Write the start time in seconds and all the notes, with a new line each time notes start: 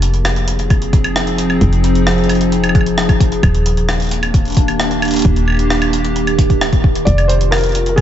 Already playing: F1 F3 A#3 G#4
0.02 C4, closed hi-hat
0.14 closed hi-hat
0.21 D#4, cross-stick, closed hi-hat, high woodblock
0.36 closed hi-hat
0.48 closed hi-hat
0.59 closed hi-hat
0.70 kick, closed hi-hat, high woodblock
0.82 closed hi-hat
0.93 kick, closed hi-hat
1.04 closed hi-hat, high woodblock
1.16 cross-stick, closed hi-hat
1.27 closed hi-hat
1.38 closed hi-hat
1.50 high woodblock
1.61 F1, kick, closed hi-hat
1.73 closed hi-hat
1.84 closed hi-hat
1.95 closed hi-hat
2.07 cross-stick, closed hi-hat
2.18 closed hi-hat
2.24 closed hi-hat
2.29 closed hi-hat, high woodblock
2.35 closed hi-hat
2.41 closed hi-hat
2.52 closed hi-hat
2.64 closed hi-hat, high woodblock
2.69 high woodblock
2.75 kick, closed hi-hat, high woodblock
2.81 high woodblock
2.86 closed hi-hat
2.98 cross-stick, closed hi-hat
3.09 kick, closed hi-hat, high woodblock
3.20 kick, closed hi-hat
3.32 closed hi-hat
3.43 D#1 D#3, kick, closed hi-hat, high woodblock
3.50 A#3 D4
3.55 closed hi-hat
3.66 closed hi-hat
3.77 closed hi-hat
3.89 cross-stick, closed hi-hat, high woodblock
4.00 G4, closed hi-hat
4.02 closed hi-hat
4.05 closed hi-hat
4.07 closed hi-hat
4.09 closed hi-hat
4.11 closed hi-hat
4.23 closed hi-hat, high woodblock
4.34 kick, closed hi-hat
4.45 closed hi-hat
4.48 closed hi-hat
4.50 closed hi-hat
4.52 closed hi-hat
4.55 kick, closed hi-hat
4.57 closed hi-hat
4.68 closed hi-hat, high woodblock
4.80 cross-stick, closed hi-hat
4.91 closed hi-hat
5.02 closed hi-hat, high woodblock
5.05 closed hi-hat
5.08 closed hi-hat
5.11 closed hi-hat
5.14 closed hi-hat
5.16 closed hi-hat
5.18 closed hi-hat
5.20 closed hi-hat
5.22 D#1, kick, closed hi-hat
5.25 closed hi-hat
5.36 closed hi-hat
5.48 high woodblock
5.50 high woodblock
5.52 high woodblock
5.57 closed hi-hat, high woodblock
5.70 cross-stick, closed hi-hat
5.82 closed hi-hat, high woodblock
5.93 closed hi-hat
6.05 closed hi-hat
6.16 closed hi-hat
6.27 closed hi-hat, high woodblock
6.39 kick, closed hi-hat
6.50 kick, closed hi-hat
6.61 cross-stick, closed hi-hat, high woodblock
6.73 kick, closed hi-hat
6.84 kick
6.95 closed hi-hat
7.05 F1 D5, kick, closed hi-hat
7.11 C4 F4
7.18 closed hi-hat, high woodblock
7.28 C5, closed hi-hat
7.41 closed hi-hat
7.51 G#4 A#4, cross-stick, closed hi-hat, high woodblock
7.55 closed hi-hat
7.58 closed hi-hat
7.61 closed hi-hat
7.64 closed hi-hat
7.66 closed hi-hat
7.69 closed hi-hat
7.72 closed hi-hat
7.75 closed hi-hat
7.86 A#4, closed hi-hat
7.96 G#4, kick, closed hi-hat, high woodblock